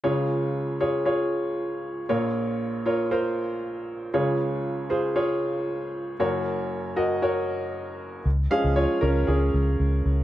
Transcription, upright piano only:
X:1
M:4/4
L:1/8
Q:1/4=117
K:Db
V:1 name="Upright piano"
[FAd]3 [FAd] [FAd]4 | [FBd]3 [FBd] [FBc]4 | [FAd]3 [FAc] [FAd]4 | [GBd]3 [GBe] [GBd]4 |
z [Af] [Fd] [DB] [DA]3 z |]
V:2 name="Upright piano" clef=bass
[D,,D,]8 | [B,,,B,,]8 | [D,,D,]8 | [G,,,G,,]8 |
z [F,A,D]6- [F,A,D] |]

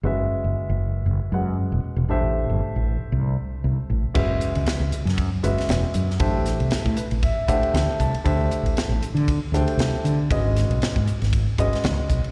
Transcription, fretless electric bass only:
X:1
M:4/4
L:1/16
Q:"Swing 16ths" 1/4=117
K:F#m
V:1 name="Fretless electric bass" clef=bass
F,,,2 z F,,, z F,,,3 F,,, z F,,2 z E,,, z E,,, | A,,,3 =G,,, z A,,,2 z =C,,2 z2 C,, z A,,, z | F,,,2 z C,, z C,, z F,,2 z F,,, z E,,, z F,,2 | A,,,3 =C,, z A,, z A,,,2 z A,,, z D,, z C,, z |
D,,2 z A,,, z A,,, z D,2 z D,, z =C,, z D,2 | G,,,3 B,,, z G,, z G,,,2 z G,,, z C,, z B,,, z |]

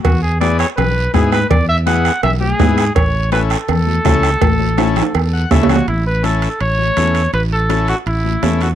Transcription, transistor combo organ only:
X:1
M:4/4
L:1/8
Q:1/4=165
K:A
V:1 name="Transistor combo organ"
z2 [B,EG] z3 [B,EG] z | z2 [B,EG] z3 [B,EG] z | z2 [CEA] z3 [CEA] z | z2 [CEA] z2 f [CEAe] c |
z2 [CEA] z3 [CEA] z | z2 [CEA] z3 [CEA] z |]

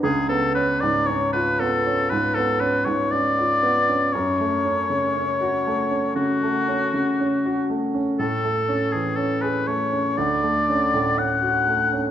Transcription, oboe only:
X:1
M:4/4
L:1/16
Q:1/4=60
K:F#m
V:1 name="Oboe"
G A B d c B A2 B A B c d4 | c8 F6 z2 | A3 G A B c2 d4 f4 |]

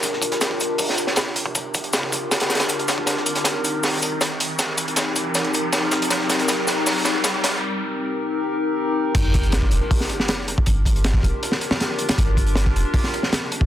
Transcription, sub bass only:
X:1
M:4/4
L:1/16
Q:1/4=158
K:Gm
V:1 name="Sub bass" clef=bass
G,,,6 F,,, z8 z | G,,,6 F,,, z8 D,, | _A,,,6 E,,, z8 z | _A,,,6 E,,, z8 z |
_A,,,6 z8 z2 | z16 | G,,,6 F,,, z8 z | G,,,6 F,,, z8 z |
G,,,6 F,,, z8 z |]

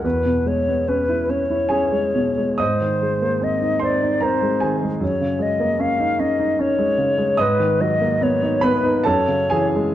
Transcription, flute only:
X:1
M:3/4
L:1/8
Q:1/4=73
K:G#dor
V:1 name="Flute"
B c B c3 | ^B2 d =d B z | c d e d c2 | B d c B c2 |]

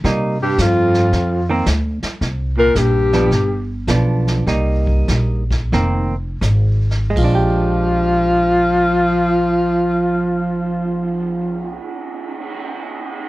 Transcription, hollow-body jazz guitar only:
X:1
M:4/4
L:1/8
Q:"Swing" 1/4=90
K:Bbmix
V:1 name="Hollow-body jazz guitar"
[G,B,E] z4 [E,B,C] z2 | z3 [F,_CD] z2 [F,=B,D]2 | [G,B,E]3 z [E,B,C] z3 | [A,DG]8- |
[A,DG]8 |]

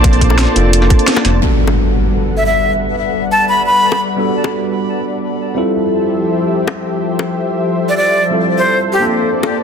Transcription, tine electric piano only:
X:1
M:4/4
L:1/8
Q:1/4=174
K:G
V:1 name="Tine electric piano"
[_B,CD=FA]3 [B,CDFA]4- [B,CDFA] | [G,B,DFA]8- | [G,B,DFA]8 | [G,B,DFA]8 |
[G,CE=FA]8- | [G,CE=FA]8 | [G,CE=FA]4 [_B,CDFA]4 |]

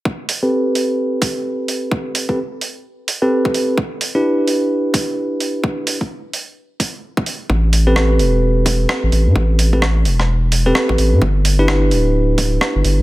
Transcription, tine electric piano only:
X:1
M:4/4
L:1/16
Q:"Swing 16ths" 1/4=129
K:Am
V:1 name="Tine electric piano"
z3 [CGAB]12- [CGAB]- | [CGAB]3 [CGAB] z6 z [CGAB]4- [CGAB] | z3 [DEGB]12- [DEGB]- | [DEGB]3 z12 z |
z3 [CGAB]12- [CGAB]- | [CGAB]3 [CGAB] z6 z [CGAB]4- [CGAB] | z3 [DEGB]12- [DEGB] |]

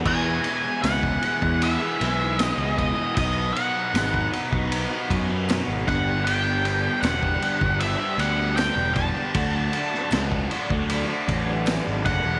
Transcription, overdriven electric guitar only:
X:1
M:4/4
L:1/16
Q:1/4=78
K:E
V:1 name="Overdriven electric guitar"
[E,,B,,E,G,B,G] [E,G,B,G] [E,G,B,G]2 [E,,B,,E,G,B,G]2 [E,G,B,G] [E,G,B,G]2 [E,G,B,G] [E,G,B,G] [E,G,B,G] [E,,B,,E,G,B,G]2 [E,G,B,G] [E,G,B,G] | [B,,F,B,DF] [B,DF] [F,B,DF]2 [B,,F,B,DF]2 [F,B,DF] [B,DF]2 [B,DF] [F,B,DF] [B,DF] [B,,F,B,DF]2 [=G,,=D,=G,B,=D=G] [G,B,DG] | [=G,,=D,=G,B,=D=G] [G,B,DG] [G,B,DG]2 [G,,D,G,B,DG]2 [G,B,DG] [G,B,DG]2 [G,B,DG] [G,B,DG] [G,B,DG] [G,,D,G,B,DG]2 [G,B,DG] [G,B,DG] | [=D,F,A,=DF] [A,DF] [F,A,DF]2 [D,F,A,DF]2 [F,A,DF] [A,DF]2 [A,DF] [F,A,DF] [A,DF] [D,F,A,DF]2 [F,A,DF] [A,DF] |]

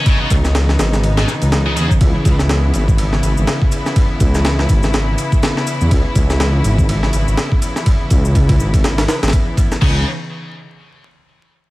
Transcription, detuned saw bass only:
X:1
M:4/4
L:1/16
Q:"Swing 16ths" 1/4=123
K:C#m
V:1 name="Detuned saw bass" clef=bass
z2 C,,4 G,,,4 z C,,3 E,, z | C,, z C,,4 G,,,4 G,,, G,,, z4 | z2 C,,4 G,,,4 z4 z E,, | C,, z C,,4 G,,,4 G,,, G,,, z4 |
z2 C,,4 G,,,4 z G,,, z4 | C,,2 z12 z2 |]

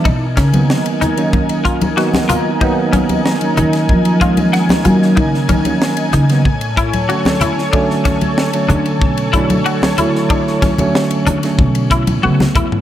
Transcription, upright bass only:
X:1
M:4/4
L:1/8
Q:1/4=94
K:Dblyd
V:1 name="Upright bass" clef=bass
_C, D, z6 | z3 E, F,3 _G, | D, E, z D, =A,,2 z2 | z3 =D, =B,,2 z2 |
z3 =D, =B,,2 ^C, z |]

